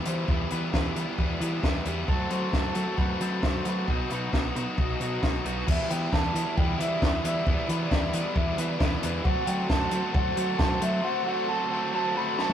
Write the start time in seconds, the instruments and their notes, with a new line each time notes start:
0.05 overdriven electric guitar E2 B2 E3 G3 B3 E4 G4 B4, fingered electric bass E3, clean electric guitar C5, closed hi-hat
0.27 overdriven electric guitar E2 B2 E3 G3 B3 E4 G4 B4, fingered electric bass E2, clean electric guitar B4, kick
0.50 overdriven electric guitar E2 B2 E3 G3 B3 E4 G4 B4, fingered electric bass E3, closed hi-hat
0.73 overdriven electric guitar E2 B2 E3 G3 B3 E4 G4 B4, fingered electric bass E2, kick, snare
0.96 overdriven electric guitar E2 B2 E3 G3 B3 E4 G4 B4, fingered electric bass E3, closed hi-hat
1.18 overdriven electric guitar E2 B2 E3 G3 B3 E4 G4 B4, fingered electric bass E2, kick
1.40 overdriven electric guitar E2 B2 E3 G3 B3 E4 G4 B4, fingered electric bass E3, closed hi-hat
1.63 fingered electric bass E2, overdriven electric guitar E2 B2 E3 G3 B3 E4 G4 B4, kick, snare
1.85 fingered electric bass E2, overdriven electric guitar E2 B2 E3 G3 B3 E4 G4 B4, closed hi-hat
2.08 fingered electric bass F#2, overdriven electric guitar F#3 A3 C4 F#4 A4, clean electric guitar A4, kick
2.31 fingered electric bass F#3, overdriven electric guitar F#3 A3 C4 F#4 A4, clean electric guitar C5, closed hi-hat
2.53 fingered electric bass F#2, overdriven electric guitar F#3 A3 C4 F#4 A4, clean electric guitar A4, kick, snare
2.75 fingered electric bass F#3, overdriven electric guitar F#3 A3 C4 F#4 A4, closed hi-hat
2.98 fingered electric bass F#2, overdriven electric guitar F#3 A3 C4 F#4 A4, clean electric guitar B4, kick
3.20 overdriven electric guitar F#3 A3 C4 F#4 A4, fingered electric bass F#3, snare, closed hi-hat
3.42 fingered electric bass F#2, overdriven electric guitar F#3 A3 C4 F#4 A4, clean electric guitar C5, kick, snare
3.65 overdriven electric guitar F#3 A3 C4 F#4 A4, fingered electric bass F#3, clean electric guitar B4, closed hi-hat
3.88 fingered electric bass B1, overdriven electric guitar B2 F#3 B3 D#4 F#4, kick
4.10 fingered electric bass B2, overdriven electric guitar B2 F#3 B3 D#4 F#4, clean electric guitar B4, closed hi-hat
4.33 fingered electric bass B1, overdriven electric guitar B2 F#3 B3 D#4 F#4, kick, snare
4.56 fingered electric bass B2, overdriven electric guitar B2 F#3 B3 D#4 F#4, closed hi-hat
4.78 fingered electric bass B1, overdriven electric guitar B2 F#3 B3 D#4 F#4, clean electric guitar D#5, kick
5.00 fingered electric bass B2, overdriven electric guitar B2 F#3 B3 D#4 F#4, clean electric guitar B4 D#5, closed hi-hat
5.23 fingered electric bass B1, overdriven electric guitar B2 F#3 B3 D#4 F#4, kick, snare
5.44 fingered electric bass B1, overdriven electric guitar B2 F#3 B3 D#4 F#4, clean electric guitar B4, closed hi-hat
5.67 overdriven electric guitar E2 B2 E3 G3 B3 E4 B4, fingered electric bass E2, analog synth pad G4 D5 E5 B5, clean electric guitar E5, kick, crash
5.90 overdriven electric guitar E2 B2 E3 G3 B3 E4 B4, fingered electric bass E3, clean electric guitar G5, closed hi-hat
6.12 overdriven electric guitar E2 B2 E3 G3 B3 E4 B4, fingered electric bass E2, clean electric guitar A5, kick, snare
6.34 overdriven electric guitar E2 B2 E3 G3 B3 E4 B4, fingered electric bass E3, closed hi-hat
6.56 overdriven electric guitar E2 B2 E3 G3 B3 E4 B4, fingered electric bass E2, clean electric guitar G5, kick
6.79 overdriven electric guitar E2 B2 E3 G3 B3 E4 B4, fingered electric bass E3, clean electric guitar E5, closed hi-hat
7.01 overdriven electric guitar E2 B2 E3 G3 B3 E4 B4, fingered electric bass E2, kick, snare
7.23 overdriven electric guitar E2 B2 E3 G3 B3 E4 B4, fingered electric bass E3, clean electric guitar E5, closed hi-hat
7.46 overdriven electric guitar E2 B2 E3 G3 B3 E4 B4, fingered electric bass E2, kick
7.68 overdriven electric guitar E2 B2 E3 G3 B3 E4 B4, fingered electric bass E3, closed hi-hat
7.90 overdriven electric guitar E2 B2 E3 G3 B3 E4 B4, fingered electric bass E2, clean electric guitar D5, kick, snare
8.12 overdriven electric guitar E2 B2 E3 G3 B3 E4 B4, fingered electric bass E3, closed hi-hat
8.34 overdriven electric guitar E2 B2 E3 G3 B3 B4, fingered electric bass E2, clean electric guitar E5, kick
8.38 overdriven electric guitar E4
8.57 overdriven electric guitar E2 B2 E3 G3 B3 E4 B4, fingered electric bass E3, clean electric guitar B4, closed hi-hat
8.79 overdriven electric guitar E2 B2 E3 G3 B3 E4 B4, fingered electric bass E2, kick, snare
9.01 overdriven electric guitar E2 B2 E3 G3 B3 E4 B4, fingered electric bass E2, clean electric guitar B4, closed hi-hat
9.23 fingered electric bass F#2, overdriven electric guitar F#3 A3 C4 F#4 A4, analog synth pad A4 C5 F#5 C6, clean electric guitar F#5, kick
9.45 overdriven electric guitar F#3 A3 C4 F#4, fingered electric bass F#3, clean electric guitar G5, closed hi-hat
9.49 overdriven electric guitar A4
9.68 fingered electric bass F#2, overdriven electric guitar F#3 A3 C4 F#4, clean electric guitar A5, kick, snare
9.72 overdriven electric guitar A4
9.90 overdriven electric guitar F#3 A3 C4 F#4, fingered electric bass F#3, closed hi-hat
9.94 overdriven electric guitar A4
10.12 fingered electric bass F#2, overdriven electric guitar F#3 A3 C4 F#4, clean electric guitar F#5, kick
10.17 overdriven electric guitar A4
10.35 overdriven electric guitar F#3 A3 C4 F#4, fingered electric bass F#3, closed hi-hat
10.39 overdriven electric guitar A4
10.58 fingered electric bass F#2, overdriven electric guitar F#3 A3 C4 F#4 A4, clean electric guitar A5, kick, snare
10.80 overdriven electric guitar F#3 A3 C4 F#4, fingered electric bass F#3, clean electric guitar E5, closed hi-hat
10.84 overdriven electric guitar A4
11.03 overdriven electric guitar F#3 A3 C4 F#4 A4, analog synth pad E5, clean electric guitar F#5
11.24 overdriven electric guitar F#3 A3 C4 F#4, clean electric guitar F#5
11.29 overdriven electric guitar A4
11.47 overdriven electric guitar F#3 A3 C4 F#4, clean electric guitar A5
11.51 overdriven electric guitar A4
11.69 overdriven electric guitar F#3 A3 C4 F#4 A4
11.92 overdriven electric guitar F#3 A3 C4 F#4 A4, clean electric guitar A5
12.15 overdriven electric guitar F#3 A3 C4 F#4 A4, clean electric guitar B5
12.37 overdriven electric guitar F#3 A3 C4 F#4 A4, clean electric guitar A5, snare
12.49 high tom